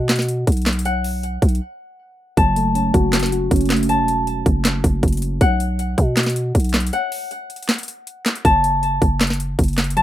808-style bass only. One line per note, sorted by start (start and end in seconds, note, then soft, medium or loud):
0.00 0.45 B2 loud
0.47 1.38 B1 loud
1.42 1.60 B1 loud
2.37 2.92 F#1 loud
2.94 3.49 F#1 loud
3.51 4.00 F#1 loud
3.99 4.44 E1 loud
4.46 4.82 F#1 loud
4.84 5.02 F#1 loud
5.03 5.39 F#1 loud
5.41 5.96 B1 loud
5.98 6.53 B2 loud
6.55 6.91 B1 loud
8.45 8.99 F#1 loud
9.02 9.56 F#1 loud
9.59 10.03 F#1 loud